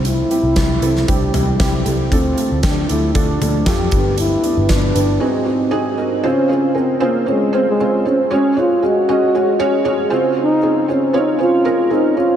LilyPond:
<<
  \new Staff \with { instrumentName = "Felt piano" } { \time 4/4 \key c \major \tempo 4 = 116 <g c' e' g'>8 <g c' e' g'>8 <g c' e' g'>8 <g c' e' a'>8 <g c' e' g'>8 <g c' e' g'>8 <g c' e' g'>8 <g c' e' a'>8 | <a d' f' a'>8 <a d' f' a'>8 <a d' f' g'>8 <a d' f' a'>8 <a d' f' a'>8 <a d' f' a'>8 <a d' f' g'>8 <b d' g' b'>8~ | <b d' g' b'>8 <b d' g' b'>8 <b d' g' b'>8 <b d' g' b'>8 <c' ees' ges' aes'>8 <c' ees' ges' aes'>8 <c' ees' ges' aes'>8 <c' ees' ges' bes'>8 | \key des \major <c' des' f' aes' c''>8 <c' des' f' aes' c''>8 <c' des' f' aes' bes'>8 <c' des' f' aes' c''>8 <c' des' f' aes' des''>8 <c' des' f' aes' c''>8 <c' des' f' aes' c''>8 <c' des' f' aes' c''>8 |
<aes des' ges' aes' des''>8 <aes des' ges' aes' des''>8 <aes des' ges' aes' ees''>8 <aes des' ges' aes' ees''>8 <aes des' ges' aes' des''>8 <aes des' ges' aes' des''>8 <aes des' ges' aes' des''>8 <c' des' f' aes' c''>8~ | <c' des' f' aes' c''>8 <c' des' f' aes' c''>8 <c' des' f' aes' c''>8 <c' des' f' aes' des''>8 <c' des' f' aes' c''>8 <c' des' f' aes' bes'>8 <c' des' f' aes' bes'>8 <c' des' f' aes' des''>8 | }
  \new Staff \with { instrumentName = "Felt piano" } { \clef bass \time 4/4 \key c \major c4 r2. | d4. r2 g,8~ | g,4 r4 aes,4. r8 | \key des \major des4. r2 r8 |
r2. r8 des8~ | des4 r2. | }
  \new Staff \with { instrumentName = "Trombone" } { \time 4/4 \key c \major e'2 d'8 g4. | c'4 d'8 e'8 d'4 g'4 | e'4 d'4 c'4. r8 | \key des \major des'4 c'8 bes8 aes8. aes8. des'8 |
des'8 f'8 ges'2~ ges'8 r8 | ees'4 des'8 ees'8 f'4 ees'8 f'8 | }
  \new Staff \with { instrumentName = "Picked electric bass" } { \clef bass \time 4/4 \key c \major c,8 r16 c,16 c,8 c,8 c,8 c,8 c,8 c,8 | d,8 r16 d,16 d,8 d,8 d,8 d,8 f,8 g,,8~ | g,,8 r16 g,,16 g,,8 g,,8 r2 | \key des \major r1 |
r1 | r1 | }
  \new DrumStaff \with { instrumentName = "Drums" } \drummode { \time 4/4 hh8 hh8 <hh bd sn>8 hh16 sn16 <hh bd>8 <hh tomfh>8 <hh bd sn>8 hh8 | <hh bd>8 hh8 <hh bd sn>8 hh8 <hh bd>8 <hh tomfh>8 <hh bd sn>8 <hh bd>8 | hh8 hh8 <hh bd sn>8 hh8 r4 r4 | r4 r4 r4 r4 |
r4 r4 r4 r4 | r4 r4 r4 r4 | }
>>